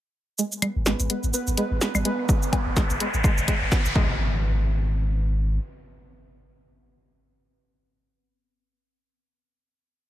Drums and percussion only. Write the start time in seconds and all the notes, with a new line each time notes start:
0.38 cabasa
0.52 cabasa
0.62 closed hi-hat, low conga, claves
0.86 snare, cabasa
1.00 closed hi-hat, cabasa
1.10 closed hi-hat
1.23 cabasa
1.34 cabasa
1.47 cabasa
1.57 closed hi-hat
1.81 snare, cabasa
1.95 low conga, cabasa, claves
2.05 closed hi-hat
2.29 kick, cabasa
2.43 cabasa
2.53 kick, closed hi-hat, low conga, low woodblock
2.77 kick, snare, cabasa
2.90 closed hi-hat, cabasa
3.00 closed hi-hat
3.14 cabasa
3.24 kick, cabasa, claves
3.38 cabasa
3.48 kick, closed hi-hat
3.72 kick, snare, cabasa
3.85 cabasa
3.96 kick